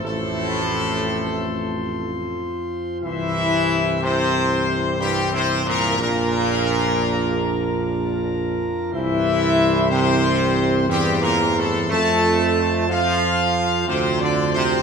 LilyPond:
<<
  \new Staff \with { instrumentName = "Trumpet section" } { \time 3/4 \key c \mixolydian \tempo 4 = 61 a'2~ a'8 r8 | e''4 c''4 \tuplet 3/2 { g'8 c''8 bes'8 } | bes'2~ bes'8 r8 | e''4 c''4 \tuplet 3/2 { g'8 bes'8 a'8 } |
a''4 f''4 \tuplet 3/2 { c''8 d''8 c''8 } | }
  \new Staff \with { instrumentName = "French horn section" } { \time 3/4 \key c \mixolydian a2~ a8 r8 | e'4 c'4 \tuplet 3/2 { g8 c'8 bes8 } | bes2~ bes8 r8 | e'4 c'4 \tuplet 3/2 { g8 bes8 a8 } |
a'4 f'4 \tuplet 3/2 { c'8 d'8 c'8 } | }
  \new Staff \with { instrumentName = "Pipe organ" } { \time 3/4 \key c \mixolydian <c' c''>2. | <c' c''>2. | <d' bes'>2. | <c' c''>2.~ |
<c' c''>2. | }
  \new Staff \with { instrumentName = "Pipe organ" } { \clef bass \time 3/4 \key c \mixolydian <f, f>2. | <g, e>2. | <f, f>2. | <g, e>2. |
<f, f>2. | }
  \new Staff \with { instrumentName = "Trombone section" } { \clef bass \time 3/4 \key c \mixolydian a,2~ a,8 r8 | e4 c4 \tuplet 3/2 { g,8 c8 bes,8 } | bes,2~ bes,8 r8 | e4 c4 \tuplet 3/2 { g,8 bes,8 a,8 } |
a4 f4 \tuplet 3/2 { c8 d8 c8 } | }
  \new Staff \with { instrumentName = "Tuba" } { \clef bass \time 3/4 \key c \mixolydian a,,2~ a,,8 r8 | c,2. | bes,,2. | c,2 e,4 |
f,2 d,4 | }
>>